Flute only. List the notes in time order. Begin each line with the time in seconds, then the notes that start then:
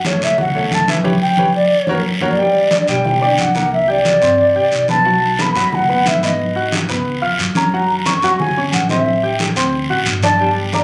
0.06 C#5
0.24 E5
0.40 F#5
0.74 A5
1.22 G5
1.56 D5
2.23 D5
3.06 G5
3.40 F#5
3.73 E5
3.90 D5
4.90 A5
5.41 B5
5.75 F#5
6.08 E5
6.25 D#5
7.57 A#5
8.06 C#6
8.40 G#5
8.73 F#5
8.90 E5
10.24 A5
10.74 A#5